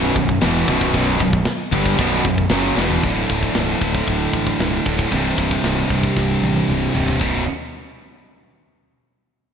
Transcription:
0.00 0.14 B0 medium
0.00 0.15 B1 loud
0.00 0.15 F#2 loud
0.00 0.15 B2 loud
0.15 0.40 B0 medium
0.15 0.37 B1 medium
0.15 0.37 F#2 medium
0.15 kick loud
0.29 kick medium
0.41 0.66 E1 medium
0.41 0.68 E2 medium
0.41 0.69 B2 loud
0.41 0.69 E3 loud
0.41 snare loud
0.41 crash medium
0.68 0.92 B0 loud
0.68 0.94 B1 medium
0.68 0.94 F#2 medium
0.68 0.95 B2 medium
0.68 kick medium
0.81 kick medium
0.93 1.18 B0 loud
0.93 1.21 B1 loud
0.93 1.21 F#2 loud
0.93 kick medium
0.93 crash medium
0.97 1.21 B2 loud
1.20 1.45 B0 medium
1.20 1.42 B1 medium
1.20 1.43 F#2 medium
1.20 kick medium
1.33 kick medium
1.45 snare loud
1.45 crash medium
1.72 1.96 G1 medium
1.72 1.98 G2 loud
1.72 1.98 D3 loud
1.72 1.98 G3 loud
1.72 kick loud
1.86 kick medium
1.98 2.23 B0 medium
1.98 2.23 B1 medium
1.98 2.24 F#2 loud
1.98 2.24 B2 loud
1.98 kick loud
1.98 crash medium
2.24 2.49 B0 medium
2.24 2.45 B1 medium
2.24 2.46 F#2 medium
2.24 kick medium
2.38 kick medium
2.49 2.75 F#1 loud
2.49 2.77 F#2 loud
2.49 2.77 C#3 loud
2.49 snare loud
2.49 crash medium
2.53 2.77 F#3 loud
2.76 3.01 E1 loud
2.76 3.02 E2 medium
2.76 3.03 B2 medium
2.76 3.03 E3 medium
2.76 snare medium
2.90 floor tom loud
3.03 3.22 D1 medium
3.03 4.85 D2 medium
3.03 4.86 A2 medium
3.03 kick medium
3.03 open hi-hat medium
3.07 4.84 D3 medium
3.30 3.48 D1 medium
3.30 kick medium
3.30 open hi-hat medium
3.43 kick medium
3.55 3.74 C1 medium
3.55 snare loud
3.55 open hi-hat medium
3.81 4.00 D1 medium
3.81 kick medium
3.81 open hi-hat medium
3.95 kick medium
4.08 4.26 D1 medium
4.08 kick loud
4.08 open hi-hat medium
4.33 4.52 A1 medium
4.33 kick medium
4.33 open hi-hat medium
4.47 kick medium
4.59 4.78 C1 medium
4.59 snare loud
4.59 open hi-hat medium
4.85 5.05 D1 medium
4.85 5.11 D2 medium
4.85 5.11 A2 medium
4.85 5.10 D3 medium
4.85 kick medium
4.85 open hi-hat medium
4.99 kick medium
5.11 5.31 C1 medium
5.11 6.94 C2 medium
5.11 6.94 G2 loud
5.11 6.93 C3 medium
5.11 kick medium
5.11 open hi-hat medium
5.38 5.57 C1 medium
5.38 kick medium
5.38 open hi-hat medium
5.51 kick medium
5.64 5.83 C1 medium
5.64 snare loud
5.64 open hi-hat medium
5.90 6.09 C1 medium
5.90 kick medium
5.90 open hi-hat soft
6.03 kick medium
6.16 6.35 C1 medium
6.16 kick medium
6.16 snare medium
6.42 6.61 A1 medium
6.42 high tom medium
6.56 high tom medium
6.68 6.87 C1 medium
6.68 mid tom medium
6.95 7.14 C1 medium
6.95 7.20 C2 soft
6.95 7.20 G2 medium
6.95 7.20 C3 medium
6.95 floor tom medium
7.08 floor tom medium
7.20 7.46 B0 medium
7.20 7.42 B1 medium
7.20 7.42 F#2 medium
7.20 7.43 B2 loud
7.20 kick medium
7.20 crash medium

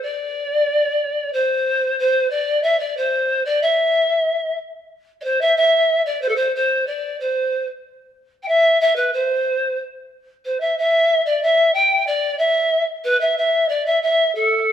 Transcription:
0.02 1.34 D5 loud
1.32 1.98 C5 medium
1.98 2.28 C5 medium
2.30 2.60 D5 medium
2.62 2.78 E5 medium
2.79 2.98 D5 medium
2.97 3.44 C5 medium
3.45 3.59 D5 medium
3.62 4.54 E5 medium
5.20 5.42 C5 medium
5.20 5.24 D5 medium
5.40 5.56 E5 medium
5.56 6.01 E5 medium
6.05 6.20 D5 medium
6.21 6.29 C5 medium
6.28 6.37 A4 medium
6.35 6.53 C5 medium
6.55 6.88 C5 medium
6.86 7.18 D5 medium
7.20 7.64 C5 medium
8.42 8.49 G5 medium
8.47 8.79 E5 loud
8.80 8.97 E5 loud
8.95 9.14 B4 medium
9.13 9.78 C5 medium
10.44 10.59 C5 medium
10.60 10.75 E5 medium
10.78 11.22 E5 loud
11.25 11.44 D5 medium
11.42 11.73 E5 loud
11.73 12.04 G5 loud
12.06 12.36 D5 loud
12.38 12.83 E5 loud
13.04 13.19 B4 medium
13.20 13.35 E5 medium
13.37 13.70 E5 medium
13.68 13.87 D5 medium
13.85 14.01 E5 medium
14.02 14.31 E5 medium
14.35 14.72 A4 medium

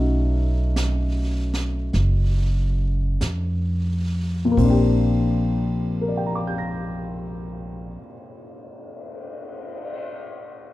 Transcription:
0.00 1.89 B1 medium
0.00 4.55 A3 soft
0.00 4.56 C#4 soft
0.00 4.57 D#4 soft
0.00 4.58 F#4 soft
0.00 4.58 E5 soft
0.76 brush sweep soft
0.76 snare soft
0.76 hi-hat pedal soft
1.54 snare soft
1.93 3.16 F#1 medium
1.93 brush sweep soft
1.93 snare soft
3.21 4.53 F2 medium
3.21 brush sweep soft
3.21 snare soft
3.21 hi-hat pedal soft
4.45 7.87 A#2 medium
4.52 7.94 A#3 soft
4.57 7.95 A#1 medium
4.57 8.00 C4 soft
4.57 kick soft
4.57 ride soft
4.64 8.06 D4 soft
4.70 8.12 G4 medium
5.54 cymbal swell soft
6.01 9.40 A#4 soft
6.08 9.46 D5 soft
6.17 9.56 G5 soft
6.26 9.65 A#5 soft
6.35 9.74 D6 soft
6.47 9.85 G6 soft
6.58 9.96 A#6 soft

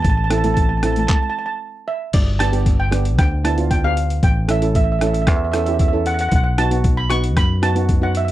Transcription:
0.02 1.05 A1 medium
0.02 0.08 A5 medium
0.02 kick loud
0.02 closed hi-hat medium
0.10 0.16 A5 medium
0.17 0.23 A5 medium
0.24 0.31 A5 medium
0.30 0.39 C4 medium
0.30 0.39 E4 medium
0.30 0.39 A4 medium
0.30 0.37 A5 medium
0.30 cross-stick medium
0.30 closed hi-hat medium
0.38 0.45 A5 medium
0.44 0.68 C4 medium
0.44 0.68 E4 medium
0.44 0.68 A4 medium
0.44 0.53 A5 medium
0.44 closed hi-hat medium
0.44 high conga medium
0.54 0.61 A5 medium
0.54 kick medium
0.54 closed hi-hat medium
0.62 0.68 A5 medium
0.69 0.76 A5 medium
0.77 0.84 A5 medium
0.83 1.10 C4 medium
0.83 1.10 E4 medium
0.83 1.10 A4 medium
0.83 0.91 A5 medium
0.83 cross-stick medium
0.83 closed hi-hat medium
0.83 low conga medium
0.93 0.98 A5 medium
0.93 closed hi-hat medium
0.97 1.06 A5 medium
0.97 high conga medium
1.07 1.13 A5 medium
1.07 kick loud
1.07 clap medium
1.15 1.21 A5 medium
1.23 1.28 A5 medium
1.30 1.36 A5 medium
1.39 1.45 A5 medium
1.46 1.52 A5 medium
1.88 2.12 E5 medium
2.13 3.19 G1 medium
2.13 2.41 D5 medium
2.13 kick loud
2.13 closed hi-hat medium
2.13 crash loud
2.39 2.48 B3 medium
2.39 2.48 D4 medium
2.39 2.48 G4 medium
2.39 2.80 A5 medium
2.39 cross-stick medium
2.39 closed hi-hat medium
2.52 2.77 B3 medium
2.52 2.77 D4 medium
2.52 2.77 G4 medium
2.52 closed hi-hat medium
2.66 kick medium
2.66 closed hi-hat medium
2.80 3.18 G5 medium
2.91 3.23 B3 medium
2.91 3.24 D4 medium
2.91 3.24 G4 medium
2.91 cross-stick medium
2.91 closed hi-hat medium
3.05 closed hi-hat medium
3.18 4.19 D2 medium
3.18 3.31 G5 medium
3.18 kick loud
3.18 cross-stick medium
3.18 closed hi-hat medium
3.44 3.53 B3 medium
3.44 3.53 D4 medium
3.44 3.53 E4 medium
3.44 3.72 A5 medium
3.44 cross-stick medium
3.44 closed hi-hat medium
3.58 3.74 B3 medium
3.58 3.74 D4 medium
3.58 3.74 F4 medium
3.58 closed hi-hat medium
3.71 3.85 G5 medium
3.71 kick medium
3.71 closed hi-hat medium
3.84 4.23 B3 medium
3.84 4.23 D4 medium
3.84 4.24 G4 medium
3.84 4.21 F5 medium
3.97 closed hi-hat medium
4.10 closed hi-hat medium
4.23 5.28 A1 medium
4.23 4.51 G5 medium
4.23 kick loud
4.23 closed hi-hat medium
4.48 4.57 C#4 medium
4.48 4.57 E4 medium
4.48 4.57 A4 medium
4.48 4.75 E5 medium
4.48 cross-stick medium
4.48 closed hi-hat medium
4.62 4.86 C#4 medium
4.62 4.86 E4 medium
4.62 4.86 A4 medium
4.62 closed hi-hat medium
4.75 4.83 E5 medium
4.75 kick medium
4.75 closed hi-hat medium
4.84 4.91 E5 medium
4.92 4.98 E5 medium
4.99 5.33 C#4 medium
4.99 5.33 E4 medium
4.99 5.33 A4 medium
4.99 5.06 E5 medium
4.99 cross-stick medium
4.99 closed hi-hat medium
5.07 5.12 E5 medium
5.14 5.20 E5 medium
5.14 closed hi-hat medium
5.22 5.27 E5 medium
5.27 6.29 E2 medium
5.27 5.35 E5 medium
5.27 kick loud
5.27 cross-stick medium
5.27 closed hi-hat medium
5.36 5.43 E5 medium
5.44 5.50 E5 medium
5.52 5.62 C#4 medium
5.52 5.62 E4 medium
5.52 5.62 A4 medium
5.52 5.58 E5 medium
5.52 cross-stick medium
5.52 closed hi-hat medium
5.59 5.65 E5 medium
5.66 5.83 C#4 medium
5.66 5.83 E4 medium
5.66 5.83 G4 medium
5.66 5.73 E5 medium
5.66 closed hi-hat medium
5.74 5.80 E5 medium
5.79 5.87 E5 medium
5.79 kick medium
5.79 closed hi-hat medium
5.88 5.96 E5 medium
5.93 6.32 C#4 medium
5.93 6.33 E4 medium
5.93 6.33 A4 medium
6.06 6.13 F#5 medium
6.06 closed hi-hat medium
6.14 6.19 F#5 medium
6.19 6.28 F#5 medium
6.19 closed hi-hat medium
6.29 7.37 B1 medium
6.29 6.34 F#5 medium
6.29 kick loud
6.29 closed hi-hat medium
6.36 6.43 F#5 medium
6.44 6.52 F#5 medium
6.58 6.67 B3 medium
6.58 6.67 D#4 medium
6.58 6.67 F#4 medium
6.58 6.95 A5 loud
6.58 cross-stick medium
6.58 closed hi-hat medium
6.71 6.95 B3 medium
6.71 6.95 D#4 medium
6.71 6.95 F#4 medium
6.71 closed hi-hat medium
6.84 kick medium
6.84 closed hi-hat medium
6.97 7.11 B5 loud
7.10 7.42 B3 medium
7.10 7.42 D#4 medium
7.10 7.42 F#4 medium
7.10 7.37 C#6 loud
7.10 cross-stick medium
7.10 closed hi-hat medium
7.24 closed hi-hat medium
7.37 8.32 F#2 medium
7.37 7.64 B5 loud
7.37 kick loud
7.37 cross-stick medium
7.37 closed hi-hat medium
7.62 7.71 B3 medium
7.62 7.71 D#4 medium
7.62 7.71 F#4 medium
7.62 8.00 A5 loud
7.62 cross-stick medium
7.62 closed hi-hat medium
7.75 7.92 B3 medium
7.75 7.92 D#4 medium
7.75 7.92 F#4 medium
7.75 closed hi-hat medium
7.89 kick medium
7.89 closed hi-hat medium
8.01 8.32 B3 medium
8.01 8.32 D#4 medium
8.01 8.32 F#4 medium
8.01 8.16 F#5 medium
8.15 8.24 E5 medium
8.15 closed hi-hat medium
8.25 8.31 E5 medium
8.25 closed hi-hat medium

